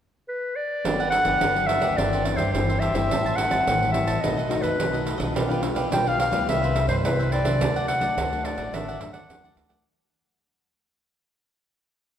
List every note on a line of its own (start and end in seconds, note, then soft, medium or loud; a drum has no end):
0.28 0.58 B4 medium
0.56 1.10 D5 medium
0.84 1.21 G1 medium
0.84 1.38 G2 medium
0.84 1.11 F#3 medium
0.84 1.12 B3 medium
0.84 0.98 D4 soft
0.84 1.12 D4 medium
0.84 0.98 G4 soft
0.84 0.99 B4 soft
0.84 0.99 F#5 medium
0.84 pandeiro medium
1.00 1.12 G4 medium
1.00 1.12 B4 medium
1.00 1.13 F#5 medium
1.00 pandeiro soft
1.10 1.68 F#5 loud
1.10 muted cavaquinho stroke soft
1.10 pandeiro medium
1.25 1.38 G1 medium
1.25 1.50 F#3 medium
1.25 1.50 B3 medium
1.25 1.50 D4 medium
1.25 1.41 G4 medium
1.25 1.40 B4 medium
1.25 1.40 F#5 medium
1.25 pandeiro medium
1.41 1.77 G1 medium
1.41 1.95 D3 medium
1.41 1.83 D4 soft
1.41 1.82 G4 soft
1.41 1.81 B4 medium
1.41 1.80 F#5 medium
1.41 pandeiro medium
1.56 1.96 F#3 medium
1.56 1.96 B3 medium
1.56 1.97 D4 medium
1.56 pandeiro soft
1.67 1.98 E5 loud
1.67 pandeiro medium
1.81 1.94 D2 medium
1.81 1.97 G4 medium
1.81 1.96 B4 medium
1.81 1.96 F#5 medium
1.81 pandeiro medium
1.97 2.34 G1 medium
1.97 2.51 G2 medium
1.97 2.22 E3 medium
1.97 2.22 C4 medium
1.97 2.11 D4 medium
1.97 2.22 D4 medium
1.97 2.12 G4 medium
1.97 2.12 C5 soft
1.97 2.38 D5 medium
1.97 2.11 E5 medium
1.97 pandeiro medium
2.13 2.24 G4 medium
2.13 2.25 C5 medium
2.13 2.24 E5 medium
2.13 pandeiro soft
2.24 2.42 E3 medium
2.24 2.42 C4 medium
2.24 2.42 D4 medium
2.24 muted cavaquinho stroke soft
2.24 pandeiro medium
2.36 2.51 G2 medium
2.36 2.67 G4 medium
2.36 2.52 C5 medium
2.36 2.66 C5 medium
2.36 2.66 E5 medium
2.36 pandeiro medium
2.52 2.90 G1 medium
2.52 3.08 G2 medium
2.52 2.92 E3 medium
2.52 2.92 C4 medium
2.52 2.92 D4 medium
2.52 2.81 C5 medium
2.52 pandeiro medium
2.69 2.81 G4 soft
2.69 2.81 C5 medium
2.69 2.81 E5 medium
2.69 pandeiro soft
2.79 2.95 D4 soft
2.79 2.95 G4 soft
2.79 2.94 C5 medium
2.79 3.37 E5 medium
2.79 2.93 E5 medium
2.79 pandeiro medium
2.94 3.07 G1 medium
2.94 3.47 G3 medium
2.94 3.48 C4 medium
2.94 3.48 E4 medium
2.94 3.09 G4 medium
2.94 3.09 C5 medium
2.94 3.08 E5 medium
2.94 pandeiro medium
3.10 3.46 A1 medium
3.10 3.64 A2 medium
3.10 3.23 G4 soft
3.10 3.24 C5 soft
3.10 3.24 E5 medium
3.10 3.24 A5 medium
3.10 pandeiro medium
3.26 3.37 C5 medium
3.26 3.37 E5 medium
3.26 3.38 A5 medium
3.26 pandeiro soft
3.36 3.92 F#5 loud
3.36 muted cavaquinho stroke soft
3.36 pandeiro medium
3.50 3.63 A1 medium
3.50 3.89 G3 medium
3.50 3.90 C4 medium
3.50 3.90 E4 medium
3.50 3.66 C5 medium
3.50 3.65 E5 medium
3.50 3.65 A5 medium
3.50 pandeiro medium
3.67 4.03 A1 medium
3.67 4.21 E3 medium
3.67 4.08 G4 medium
3.67 4.08 C5 soft
3.67 4.07 E5 medium
3.67 4.06 A5 medium
3.67 pandeiro medium
3.83 pandeiro soft
3.92 4.18 G3 soft
3.92 4.18 C4 medium
3.92 4.18 E4 medium
3.92 4.23 E5 medium
3.92 pandeiro medium
4.07 4.20 A1 medium
4.07 4.22 C5 medium
4.07 4.22 E5 medium
4.07 4.21 A5 medium
4.07 pandeiro medium
4.21 4.59 B1 medium
4.21 4.76 B2 medium
4.21 4.39 A3 medium
4.21 4.39 D#4 medium
4.21 4.36 D#4 soft
4.21 4.40 F#4 medium
4.21 4.36 A4 medium
4.21 4.37 B4 medium
4.21 4.63 D#5 medium
4.21 4.36 D#5 medium
4.21 pandeiro medium
4.37 4.49 A4 medium
4.37 4.49 B4 medium
4.37 4.50 D#5 medium
4.37 pandeiro soft
4.49 4.77 A3 medium
4.49 4.77 D#4 medium
4.49 4.77 F#4 medium
4.49 muted cavaquinho stroke soft
4.49 pandeiro medium
4.62 4.76 F#2 medium
4.62 4.92 A4 medium
4.62 5.06 B4 medium
4.62 4.92 B4 medium
4.62 4.91 D#5 medium
4.62 pandeiro medium
4.78 5.16 B1 medium
4.78 5.32 F#3 medium
4.78 pandeiro medium
4.93 5.17 A3 medium
4.93 5.17 D#4 medium
4.93 5.18 F#4 medium
4.93 5.05 A4 medium
4.93 5.06 B4 soft
4.93 5.06 D#5 medium
4.93 pandeiro soft
5.05 5.19 D#4 soft
5.05 5.18 A4 soft
5.05 5.18 B4 soft
5.05 5.17 D#5 medium
5.05 pandeiro medium
5.18 5.33 B1 medium
5.18 5.49 G3 medium
5.18 5.49 D4 medium
5.18 5.50 F4 medium
5.18 5.34 A4 medium
5.18 5.33 B4 medium
5.18 5.33 D#5 medium
5.18 pandeiro medium
5.34 5.72 B1 medium
5.34 5.89 B2 medium
5.34 5.48 D4 soft
5.34 5.49 G4 soft
5.34 5.49 B4 soft
5.34 5.48 F5 medium
5.34 pandeiro medium
5.49 5.60 G3 medium
5.49 5.60 D4 medium
5.49 5.60 F4 medium
5.49 5.61 G4 medium
5.49 5.62 B4 medium
5.49 5.62 F5 medium
5.49 pandeiro soft
5.62 5.80 G3 medium
5.62 5.80 D4 soft
5.62 5.80 F4 medium
5.62 muted cavaquinho stroke soft
5.62 pandeiro medium
5.75 5.89 B1 medium
5.75 5.90 G4 medium
5.75 5.90 B4 medium
5.75 5.90 F5 medium
5.75 pandeiro medium
5.91 6.28 B1 medium
5.91 6.45 B2 medium
5.91 6.18 G3 medium
5.91 6.33 D4 soft
5.91 6.19 D4 medium
5.91 6.19 F4 medium
5.91 6.32 G4 soft
5.91 6.31 B4 medium
5.91 6.30 F5 medium
5.91 6.09 G5 medium
5.91 pandeiro medium
6.07 6.20 F5 loud
6.07 pandeiro soft
6.20 6.47 F5 medium
6.20 pandeiro medium
6.32 6.45 D2 medium
6.32 6.85 G3 medium
6.32 6.85 B3 medium
6.32 6.85 E4 medium
6.32 6.46 G4 medium
6.32 6.46 B4 medium
6.32 6.46 F5 medium
6.32 pandeiro medium
6.48 6.84 C2 medium
6.48 7.02 C3 medium
6.48 6.61 G4 soft
6.48 6.62 B4 medium
6.48 6.62 C5 medium
6.48 6.88 E5 medium
6.48 6.62 E5 medium
6.48 pandeiro medium
6.63 6.75 B4 medium
6.63 6.75 C5 medium
6.63 6.75 E5 medium
6.63 pandeiro soft
6.75 muted cavaquinho stroke soft
6.75 pandeiro medium
6.88 7.01 G2 medium
6.88 7.17 B4 medium
6.88 6.95 C5 medium
6.88 7.18 C5 medium
6.88 7.17 E5 medium
6.88 pandeiro medium
7.04 7.40 C2 medium
7.04 7.58 G2 medium
7.04 7.43 G3 medium
7.04 7.43 B3 medium
7.04 7.43 E4 medium
7.04 7.34 B4 medium
7.04 pandeiro medium
7.19 7.32 B4 medium
7.19 7.31 C5 medium
7.19 7.32 E5 medium
7.19 pandeiro soft
7.32 7.45 G4 soft
7.32 7.45 B4 soft
7.32 7.45 C5 medium
7.32 7.87 D5 medium
7.32 7.43 E5 medium
7.32 pandeiro medium
7.44 7.58 C2 medium
7.44 7.70 F#3 medium
7.44 7.70 A3 medium
7.44 7.70 D4 medium
7.44 7.59 B4 medium
7.44 7.60 C5 medium
7.44 7.59 E5 medium
7.44 pandeiro medium
7.60 7.97 D2 medium
7.60 8.14 D3 medium
7.60 7.74 D4 medium
7.60 7.74 A4 soft
7.60 7.74 D5 soft
7.60 7.75 F#5 medium
7.60 pandeiro medium
7.76 7.87 A4 medium
7.76 7.87 D5 medium
7.76 7.87 F#5 medium
7.76 pandeiro soft
7.88 8.46 F#5 loud
7.88 muted cavaquinho stroke soft
7.88 pandeiro medium
8.00 8.14 D2 medium
8.00 8.25 F#3 medium
8.00 8.26 A3 medium
8.00 8.26 D4 medium
8.00 8.16 A4 medium
8.00 8.16 D5 medium
8.00 8.15 F#5 medium
8.00 pandeiro medium
8.17 8.53 D2 medium
8.17 8.70 A2 medium
8.17 8.58 D4 medium
8.17 8.58 A4 soft
8.17 8.57 D5 medium
8.17 8.56 F#5 medium
8.17 pandeiro medium
8.32 8.83 F#3 medium
8.32 8.83 A3 medium
8.32 8.83 D4 medium
8.32 pandeiro soft
8.45 8.75 D5 medium
8.45 pandeiro medium
8.57 8.70 A1 medium
8.57 8.72 A4 medium
8.57 8.72 D5 medium
8.57 8.71 F#5 medium
8.57 pandeiro medium
8.73 8.97 A1 medium
8.73 9.27 D3 medium
8.73 8.86 D4 medium
8.73 8.87 A4 soft
8.73 8.87 D5 medium
8.73 9.13 E5 medium
8.73 8.87 F#5 medium
8.73 pandeiro medium
8.88 9.00 A4 medium
8.88 9.00 D5 medium
8.88 9.00 F#5 medium
8.88 pandeiro soft
9.00 9.26 F#2 medium
9.00 9.18 F#3 medium
9.00 9.18 A3 medium
9.00 9.18 D4 medium
9.00 muted cavaquinho stroke soft
9.00 pandeiro medium
9.13 9.42 A4 medium
9.13 9.42 D5 medium
9.13 9.41 F#5 medium
9.13 9.54 F#5 medium
9.13 pandeiro medium
9.29 9.55 E2 medium
9.29 9.83 A2 medium
9.29 9.56 F#3 medium
9.29 9.56 A3 medium
9.29 9.57 D4 medium
9.29 pandeiro medium
9.44 9.56 A4 medium
9.44 9.56 D5 medium
9.44 9.57 F#5 medium
9.44 pandeiro soft
9.56 9.82 D2 medium
9.56 9.70 D4 soft
9.56 9.70 A4 soft
9.56 9.69 D5 soft
9.56 pandeiro medium
9.69 9.80 F#3 medium
9.69 9.81 A3 medium
9.69 9.81 D4 medium
9.69 9.84 A4 medium
9.69 9.84 D5 medium
9.69 9.83 F#5 medium
9.69 pandeiro medium